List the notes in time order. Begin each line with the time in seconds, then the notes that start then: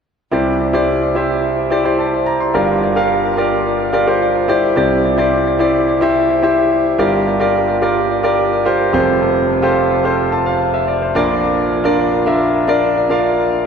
0.31 C2 C3 E4 G4 C5 D5
0.73 E4 G4 C5 D5
1.15 E4 G4 C5 E5
1.70 E4 G4 C5 D5
1.84 E4 G4 C5 D5
1.99 A5
2.26 A#5
2.40 C6
2.54 G1 G2 F4 G4 A#4 D5
2.95 F4 G4 A#4 F5
3.37 F4 G4 A#4 D5
3.92 F4 G4 A#4 D5
4.07 F4 G4 A#4 C5
4.48 E4 G4 C5 D5
4.76 C2 C3 E4 G4 C5 D5
5.17 E4 G4 C5 D5
5.59 E4 G4 C5 D5
6.01 E4 G4 C5 E5
6.42 E4 G4 C5 E5
6.98 G1 G2 F4 G4 A#4 D5
7.40 F4 G4 A#4 D5
7.81 F4 G4 A#4 D5
8.23 F4 G4 A#4 D5
8.65 F4 G4 A#4 C5
8.93 F1 F2 F4 G4 G#4 C5
9.00 A4
9.62 F4 G4 A4 C5
10.04 F4 G4 A4 C5
10.32 A5
10.46 F5
10.74 E5
10.88 D5
11.02 C5
11.15 A#1 A#2 D4 F4 A#4 D5
11.84 D4 F4 A#4 D5
12.26 D4 F4 A#4 E5
12.68 D4 F4 A#4 D5
13.09 D4 F4 A#4 F5